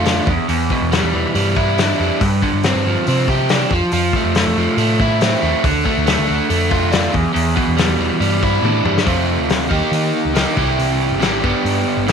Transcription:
0.00 0.19 F2 medium
0.00 0.28 D3 medium
0.00 0.28 A3 medium
0.00 0.28 F4 medium
0.05 0.31 D4 medium
0.05 snare loud
0.05 open hi-hat medium
0.27 0.37 E2 medium
0.27 0.48 E2 medium
0.27 kick loud
0.49 0.68 E2 loud
0.49 1.57 E2 medium
0.49 open hi-hat medium
0.70 1.79 B2 medium
0.70 kick medium
0.82 1.01 E2 medium
0.92 1.34 G3 medium
0.92 snare loud
0.92 open hi-hat medium
1.03 1.13 E2 medium
1.13 1.24 E2 medium
1.13 2.21 E3 medium
1.35 1.92 G2 medium
1.35 2.00 G3 medium
1.35 open hi-hat medium
1.56 2.21 E4 medium
1.56 kick medium
1.78 2.21 D4 medium
1.78 snare loud
1.78 open hi-hat medium
2.00 2.09 F2 medium
2.00 2.22 G3 medium
2.21 3.28 G2 medium
2.21 2.40 G2 loud
2.21 kick loud
2.21 open hi-hat medium
2.42 3.50 D3 medium
2.42 kick medium
2.54 2.73 G2 medium
2.63 3.06 C4 medium
2.63 snare loud
2.63 open hi-hat medium
2.75 2.84 G2 medium
2.86 2.95 G2 medium
2.86 3.72 F3 medium
3.07 3.64 C3 loud
3.07 3.72 C4 medium
3.07 open hi-hat medium
3.28 3.72 G4 medium
3.28 kick medium
3.49 3.71 D4 medium
3.49 snare loud
3.49 open hi-hat medium
3.70 3.80 F2 medium
3.70 3.92 F3 medium
3.70 kick loud
3.92 4.12 F2 loud
3.92 4.57 F3 medium
3.92 open hi-hat medium
4.13 4.36 A3 medium
4.13 kick medium
4.25 4.44 F2 medium
4.35 4.77 A3 medium
4.35 snare loud
4.35 open hi-hat medium
4.47 4.56 F2 medium
4.57 4.66 F2 medium
4.57 5.65 F3 medium
4.77 5.34 A2 loud
4.77 5.41 A3 medium
4.77 open hi-hat medium
5.00 5.65 E4 medium
5.00 kick medium
5.21 5.65 C4 medium
5.21 snare loud
5.21 open hi-hat medium
5.42 5.52 D#2 medium
5.42 5.64 A3 medium
5.64 5.83 D2 loud
5.64 6.26 D3 medium
5.64 kick loud
5.64 open hi-hat medium
5.85 6.05 A3 medium
5.85 kick medium
5.97 6.16 D2 medium
6.07 6.49 A3 medium
6.07 snare loud
6.07 open hi-hat medium
6.18 6.28 D2 medium
6.27 6.39 D2 medium
6.27 7.14 D3 medium
6.50 7.07 F2 loud
6.50 7.14 A3 medium
6.50 open hi-hat medium
6.71 7.14 F4 medium
6.71 kick medium
6.92 7.14 D4 medium
6.92 snare loud
6.92 open hi-hat medium
7.12 7.33 E2 medium
7.12 7.24 E2 medium
7.12 kick loud
7.34 8.42 E2 medium
7.34 7.55 E2 loud
7.34 open hi-hat medium
7.56 8.64 B2 medium
7.56 kick medium
7.67 7.87 E2 medium
7.77 8.19 G3 medium
7.77 snare loud
7.77 open hi-hat medium
7.88 7.98 E2 medium
7.99 8.09 E2 medium
7.99 9.05 E3 medium
8.20 8.58 G2 loud
8.20 8.84 G3 medium
8.20 open hi-hat medium
8.43 9.07 E4 medium
8.43 kick medium
8.62 8.83 A2 medium
8.62 9.07 D4 medium
8.62 high tom medium
8.84 9.04 G2 medium
8.84 9.07 G3 medium
8.84 mid tom medium
8.98 snare medium
9.05 9.69 F2 medium
9.05 9.38 F2 medium
9.05 9.69 C3 medium
9.05 9.68 F3 medium
9.05 9.70 A3 medium
9.05 9.70 C4 medium
9.05 9.71 F4 medium
9.05 kick loud
9.05 open hi-hat medium
9.38 9.67 D2 medium
9.49 snare loud
9.49 open hi-hat medium
9.69 9.81 D#2 medium
9.69 10.33 D#3 medium
9.69 10.34 A#3 medium
9.69 10.34 D#4 medium
9.69 10.35 G4 medium
9.69 kick medium
9.91 10.11 D#3 medium
9.91 open hi-hat medium
10.25 10.44 C#2 medium
10.34 10.55 D#3 medium
10.34 10.56 A#3 medium
10.34 10.57 D#4 medium
10.34 10.57 G4 medium
10.34 snare loud
10.34 open hi-hat medium
10.55 10.76 C2 medium
10.55 11.19 C3 medium
10.55 11.20 E3 medium
10.55 11.20 G3 medium
10.55 11.21 E4 medium
10.55 11.21 G4 medium
10.55 kick loud
10.79 11.13 C2 medium
10.79 open hi-hat soft
11.11 11.39 G#1 medium
11.20 11.41 C3 medium
11.20 11.42 E3 medium
11.20 11.42 G3 medium
11.20 11.42 E4 medium
11.20 11.43 G4 medium
11.20 snare medium
11.20 open hi-hat soft
11.42 11.53 G1 medium
11.42 12.06 G2 medium
11.42 12.07 D3 medium
11.42 12.07 G3 medium
11.42 12.07 B3 medium
11.42 12.08 D4 medium
11.42 12.08 G4 medium
11.42 kick loud
11.64 11.83 G2 medium
11.64 open hi-hat medium
11.97 12.12 G1 medium
12.08 12.12 G2 medium
12.08 12.12 D3 medium
12.08 12.12 G3 medium
12.08 open hi-hat medium

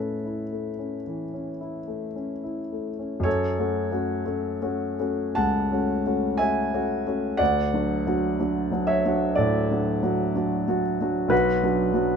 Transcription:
0.00 1.03 A2 soft
0.00 0.14 A3 soft
0.00 0.79 C#4 soft
0.00 0.25 E4 soft
0.00 2.15 A4 soft
0.00 3.28 B4 medium
0.25 0.69 E4 soft
0.52 0.96 A3 soft
0.79 1.23 C#4 soft
1.07 1.51 E3 soft
1.34 1.78 C#4 soft
1.61 2.05 E4 soft
1.87 2.32 A3 soft
2.16 2.60 C#4 soft
2.44 2.89 E4 soft
2.72 3.15 A3 soft
2.99 3.25 C#4 soft
3.20 3.55 F#2 medium
3.20 5.35 C#5 medium
3.25 5.32 A4 medium
3.59 3.88 A3 soft
3.59 3.89 C#4 soft
3.59 3.89 F#4 soft
3.92 4.22 A3 soft
3.92 4.22 C#4 soft
3.92 4.23 F#4 soft
4.26 4.58 A3 soft
4.26 4.58 C#4 soft
4.26 4.58 F#4 soft
4.62 4.96 A3 soft
4.62 4.96 C#4 soft
4.62 4.96 F#4 soft
4.99 5.33 A3 soft
4.99 5.33 C#4 soft
4.99 5.33 F#4 soft
5.35 5.71 C#2 soft
5.35 6.35 F#5 medium
5.35 6.39 A5 medium
5.72 6.02 A3 soft
5.72 6.02 C#4 soft
5.72 6.03 F#4 soft
6.06 6.36 A3 soft
6.06 6.37 C#4 soft
6.06 6.37 F#4 soft
6.38 6.70 A3 soft
6.38 6.70 C#4 soft
6.38 6.70 F#4 soft
6.38 7.36 E5 medium
6.38 7.39 G#5 medium
6.73 7.03 A3 soft
6.73 7.03 C#4 soft
6.73 7.04 F#4 soft
7.07 7.37 A3 soft
7.07 7.37 C#4 soft
7.07 7.37 F#4 soft
7.37 7.72 D2 medium
7.37 8.85 D5 medium
7.37 8.88 F#5 medium
7.74 8.04 F#3 soft
7.74 8.04 D4 soft
7.74 8.04 F#4 soft
8.07 8.37 F#3 soft
8.07 8.37 D4 soft
8.07 8.37 F#4 soft
8.40 8.70 F#3 soft
8.40 8.70 D4 soft
8.40 8.70 F#4 soft
8.71 9.01 F#3 soft
8.71 9.02 D4 soft
8.71 9.02 F#4 soft
8.87 9.33 C#5 medium
8.87 9.36 E5 medium
9.06 9.35 F#3 soft
9.06 9.35 D4 soft
9.06 9.35 F#4 soft
9.36 9.69 A2 medium
9.36 10.79 A4 medium
9.36 10.83 D5 medium
9.71 10.00 F#3 soft
9.71 10.00 D4 soft
9.71 10.00 F#4 soft
10.03 10.32 F#3 soft
10.03 10.32 D4 soft
10.03 10.32 F#4 soft
10.36 10.65 F#3 soft
10.36 10.65 D4 soft
10.36 10.65 F#4 soft
10.68 10.97 F#3 soft
10.68 10.97 D4 soft
10.68 10.97 F#4 soft
11.01 11.29 F#3 soft
11.01 11.29 D4 soft
11.01 11.29 F#4 soft
11.28 11.60 B1 medium
11.28 11.63 F#4 medium
11.28 12.16 B4 medium
11.63 11.90 F#3 soft
11.63 11.90 D4 soft
11.63 11.91 F#4 soft
11.93 12.16 F#3 soft
11.93 12.16 D4 soft
11.93 12.16 F#4 soft

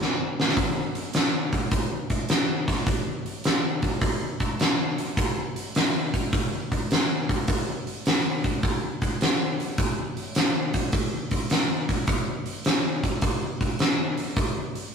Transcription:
0.02 snare medium
0.40 snare medium
0.49 snare medium
0.57 kick medium
0.57 open hi-hat medium
0.95 open hi-hat soft
1.13 snare loud
1.13 open hi-hat medium
1.53 kick medium
1.53 open hi-hat soft
1.71 kick loud
1.71 open hi-hat medium
2.10 kick medium
2.10 open hi-hat soft
2.29 snare loud
2.29 open hi-hat medium
2.68 kick medium
2.68 snare soft
2.68 open hi-hat soft
2.86 kick loud
2.86 open hi-hat medium
3.26 open hi-hat soft
3.44 snare medium
3.44 open hi-hat medium
3.82 kick medium
3.82 open hi-hat soft
4.01 kick medium
4.01 open hi-hat medium
4.40 kick medium
4.40 open hi-hat soft
4.59 snare loud
4.59 open hi-hat medium
4.98 open hi-hat soft
5.17 kick medium
5.17 open hi-hat medium
5.56 open hi-hat soft
5.75 snare loud
5.75 open hi-hat medium
6.14 kick medium
6.14 open hi-hat soft
6.33 kick medium
6.33 open hi-hat medium
6.72 kick medium
6.72 open hi-hat soft
6.91 snare loud
6.91 open hi-hat medium
7.29 kick medium
7.29 open hi-hat soft
7.48 kick medium
7.48 open hi-hat medium
7.87 open hi-hat soft
8.06 snare loud
8.06 open hi-hat medium
8.44 kick medium
8.44 open hi-hat soft
8.63 kick loud
8.63 open hi-hat medium
9.02 kick medium
9.02 open hi-hat soft
9.21 snare medium
9.21 open hi-hat medium
9.60 open hi-hat soft
9.78 kick medium
9.78 open hi-hat medium
10.17 open hi-hat soft
10.35 snare loud
10.35 open hi-hat medium
10.74 kick medium
10.74 open hi-hat soft
10.92 kick loud
10.92 open hi-hat medium
11.31 kick medium
11.31 open hi-hat soft
11.50 snare medium
11.50 open hi-hat medium
11.89 kick medium
11.89 open hi-hat soft
12.07 kick medium
12.07 open hi-hat medium
12.46 open hi-hat soft
12.65 snare loud
12.65 open hi-hat medium
13.04 kick medium
13.04 open hi-hat soft
13.21 kick loud
13.21 open hi-hat medium
13.61 kick medium
13.61 open hi-hat soft
13.79 snare loud
13.79 open hi-hat medium
14.17 open hi-hat soft
14.36 kick loud
14.36 open hi-hat medium
14.75 open hi-hat soft

